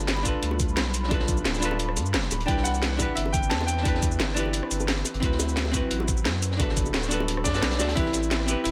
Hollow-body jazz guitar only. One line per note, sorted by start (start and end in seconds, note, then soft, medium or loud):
0.00 0.22 D4 medium
0.00 0.23 F4 medium
0.00 0.24 A4 medium
0.00 0.25 B4 medium
0.23 1.07 D4 medium
0.23 1.09 F4 medium
0.23 1.10 A4 medium
0.28 1.10 B4 medium
1.09 1.59 D4 medium
1.09 1.60 F4 medium
1.09 1.61 A4 medium
1.14 1.62 B4 medium
1.60 2.44 D4 medium
1.60 2.46 F4 medium
1.60 2.47 A4 medium
1.65 2.48 B4 medium
2.46 2.96 D4 medium
2.46 2.97 E4 medium
2.46 2.98 G4 medium
2.51 2.99 B4 medium
2.97 3.82 D4 medium
2.97 3.83 E4 medium
2.97 3.84 G4 medium
3.02 3.85 B4 loud
3.83 4.33 D4 medium
3.83 4.35 E4 medium
3.83 4.35 G4 medium
3.88 4.36 B4 medium
4.34 5.19 D4 medium
4.34 5.20 E4 medium
4.34 5.21 G4 medium
4.39 5.22 B4 medium
5.20 5.70 C4 medium
5.20 5.72 E4 medium
5.20 5.72 F#4 medium
5.25 5.73 B4 medium
5.71 6.56 C4 medium
5.71 6.57 E4 medium
5.71 6.58 F#4 medium
5.77 6.59 B4 loud
6.57 7.07 D4 medium
6.57 7.09 F#4 medium
6.57 7.10 A4 medium
6.62 7.10 B4 medium
7.09 7.51 D4 medium
7.09 7.52 F#4 medium
7.09 7.53 A4 medium
7.14 7.54 B4 medium
7.53 7.77 D4 medium
7.53 7.78 F#4 medium
7.53 7.78 A4 medium
7.53 7.78 B4 medium
7.78 7.94 D4 medium
7.78 7.95 F#4 medium
7.78 7.95 A4 medium
7.78 7.96 D5 medium
7.94 8.45 C4 medium
7.94 8.46 E4 medium
7.94 8.47 G4 medium
7.99 8.48 B4 medium
8.46 8.71 C4 medium
8.46 8.71 E4 medium
8.46 8.71 G4 medium
8.51 8.71 B4 loud